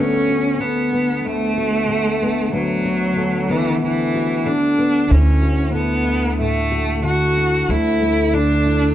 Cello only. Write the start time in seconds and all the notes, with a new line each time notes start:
Already playing: C#4
0.61 B3
1.26 A3
2.54 F#3
3.51 E3
3.82 E3
4.46 D4
5.11 C#4
5.74 B3
6.40 A3
7.05 F#4
7.70 E4
8.33 D4